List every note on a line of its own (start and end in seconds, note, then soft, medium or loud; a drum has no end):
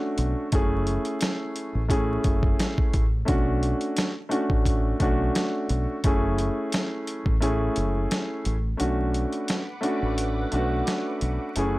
0.00 0.44 A3 loud
0.00 0.45 C#4 medium
0.00 0.45 D4 medium
0.00 0.46 F#4 loud
0.18 0.34 B1 medium
0.18 closed hi-hat medium
0.52 0.97 F#1 loud
0.52 1.80 A3 medium
0.52 1.81 C#4 medium
0.52 1.81 E4 medium
0.52 1.81 G#4 loud
0.52 kick loud
0.52 closed hi-hat medium
0.87 closed hi-hat medium
1.05 closed hi-hat soft
1.21 snare loud
1.21 closed hi-hat loud
1.56 closed hi-hat medium
1.75 2.16 A1 medium
1.89 3.01 A3 medium
1.89 3.02 C#4 medium
1.89 3.02 E4 medium
1.89 3.02 G#4 loud
1.89 kick medium
1.89 closed hi-hat medium
2.24 2.53 F#1 medium
2.24 kick medium
2.24 closed hi-hat medium
2.43 kick loud
2.59 snare loud
2.59 closed hi-hat medium
2.78 kick loud
2.94 3.22 A1 loud
2.94 kick medium
2.94 closed hi-hat medium
3.25 3.72 B1 loud
3.25 4.07 A3 medium
3.25 4.07 C#4 medium
3.25 4.08 D4 medium
3.25 4.08 F#4 loud
3.25 kick loud
3.25 closed hi-hat medium
3.63 closed hi-hat medium
3.81 closed hi-hat soft
3.96 snare loud
3.96 closed hi-hat loud
4.29 4.94 A3 medium
4.29 4.95 C#4 medium
4.29 4.95 D4 medium
4.29 4.96 F#4 loud
4.29 closed hi-hat medium
4.50 4.92 A1 medium
4.50 kick medium
4.66 kick medium
4.66 closed hi-hat loud
4.99 5.29 B1 medium
4.99 5.96 A3 loud
4.99 5.96 C#4 medium
4.99 5.97 D4 medium
4.99 5.97 F#4 loud
4.99 kick medium
4.99 closed hi-hat medium
5.35 snare loud
5.35 closed hi-hat medium
5.69 5.85 B1 loud
5.69 closed hi-hat medium
6.04 6.48 F#1 loud
6.04 7.32 A3 loud
6.04 7.32 C#4 medium
6.04 7.33 E4 medium
6.04 7.33 G#4 loud
6.04 kick loud
6.04 closed hi-hat medium
6.38 closed hi-hat medium
6.72 snare loud
6.72 closed hi-hat loud
7.07 closed hi-hat medium
7.26 7.68 A1 medium
7.26 kick medium
7.40 8.53 A3 medium
7.40 8.53 C#4 medium
7.40 8.54 E4 medium
7.40 8.54 G#4 loud
7.40 closed hi-hat medium
7.76 8.05 F#1 medium
7.76 closed hi-hat medium
8.11 snare loud
8.11 closed hi-hat loud
8.45 8.74 A1 loud
8.45 closed hi-hat medium
8.77 9.24 B1 loud
8.77 9.59 A3 medium
8.77 9.59 C#4 medium
8.77 9.60 D4 medium
8.77 9.60 F#4 loud
8.77 11.52 B4 medium
8.77 11.52 F#5 medium
8.77 11.52 D6 medium
8.77 closed hi-hat medium
9.14 closed hi-hat medium
9.33 closed hi-hat soft
9.48 snare loud
9.48 closed hi-hat loud
9.81 10.46 A3 loud
9.81 10.46 C#4 medium
9.81 10.47 D4 medium
9.81 10.47 F#4 loud
9.81 closed hi-hat medium
10.03 10.44 A1 medium
10.18 closed hi-hat loud
10.51 10.81 B1 medium
10.51 11.48 A3 loud
10.51 11.48 C#4 medium
10.51 11.49 D4 medium
10.51 11.49 F#4 loud
10.51 closed hi-hat medium
10.87 snare loud
10.87 closed hi-hat medium
11.21 11.37 B1 loud
11.21 closed hi-hat medium
11.55 11.79 F#1 loud
11.55 11.79 A3 medium
11.55 11.79 C#4 medium
11.55 11.79 E4 medium
11.55 11.79 G#4 loud
11.55 11.79 C#5 medium
11.55 11.79 F#5 medium
11.55 11.79 E6 loud
11.55 closed hi-hat medium